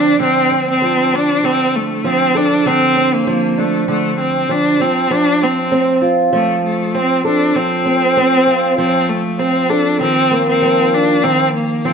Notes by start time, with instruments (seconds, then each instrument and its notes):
Already playing: steel-string acoustic guitar D3 F3 C4 D4, cello D4
0.20 steel-string acoustic guitar D3, cello C4
0.51 steel-string acoustic guitar C4
0.70 cello C4
0.82 steel-string acoustic guitar F3
1.13 steel-string acoustic guitar D4, cello D4
1.44 steel-string acoustic guitar D3, cello C4
1.76 cello A3
2.04 steel-string acoustic guitar F3, cello C4
2.35 cello D4, steel-string acoustic guitar A4
2.66 steel-string acoustic guitar D3, cello C4
2.96 steel-string acoustic guitar C4
3.14 cello A#3
3.27 steel-string acoustic guitar F3
3.58 cello A3, steel-string acoustic guitar D4
3.88 steel-string acoustic guitar D3, cello A3
4.20 cello C4
4.49 steel-string acoustic guitar F3, cello D4
4.80 steel-string acoustic guitar F3, cello C4
5.10 steel-string acoustic guitar F3, cello D4
5.42 steel-string acoustic guitar C4, cello C4
5.72 steel-string acoustic guitar C4
6.02 steel-string acoustic guitar F4
6.33 steel-string acoustic guitar F3, cello A3
6.65 cello A3
6.94 steel-string acoustic guitar C4, cello C4
7.25 cello D4, steel-string acoustic guitar A4
7.56 steel-string acoustic guitar F3, cello C4
7.86 steel-string acoustic guitar C4
8.17 steel-string acoustic guitar C4
8.47 steel-string acoustic guitar F4
8.78 steel-string acoustic guitar F3, cello C4
9.09 cello A3
9.39 cello C4, steel-string acoustic guitar C4
9.70 cello D4, steel-string acoustic guitar A4
10.00 steel-string acoustic guitar D#3, cello C4
10.31 steel-string acoustic guitar A#3
10.49 cello C4
10.62 steel-string acoustic guitar F3
10.94 cello D4
11.24 steel-string acoustic guitar D#3, cello C4
11.54 cello A#3
11.85 steel-string acoustic guitar F3, cello C4